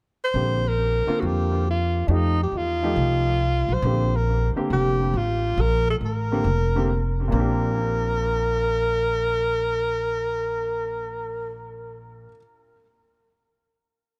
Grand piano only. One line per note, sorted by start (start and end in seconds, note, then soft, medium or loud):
0.35 0.61 D3 soft
0.35 0.62 A#3 soft
0.35 0.62 C4 soft
0.35 0.62 G4 soft
1.07 1.63 D3 medium
1.07 1.63 A#3 medium
1.07 1.63 C4 medium
1.07 1.63 F4 medium
2.09 2.36 F3 medium
2.09 2.36 A3 soft
2.09 2.36 D#4 soft
2.09 2.36 G4 medium
2.83 3.38 F3 medium
2.83 3.38 A3 medium
2.83 3.38 D#4 medium
2.83 3.38 G4 medium
3.85 4.11 D3 medium
3.85 4.11 A#3 soft
3.85 4.11 C4 medium
3.85 4.11 G4 medium
4.56 5.11 D3 medium
4.56 5.12 A#3 medium
4.56 5.12 C4 medium
4.56 5.12 G4 medium
6.32 6.45 D3 medium
6.32 6.44 A#3 medium
6.32 6.45 C4 medium
6.32 6.45 G4 medium
6.75 6.88 D3 medium
6.75 6.88 A#3 medium
6.75 6.89 C4 medium
6.75 6.88 G4 medium
7.28 12.26 A#2 medium
7.28 12.28 A#3 medium
7.34 12.31 C4 medium
7.34 12.35 D4 medium
7.40 12.37 G4 medium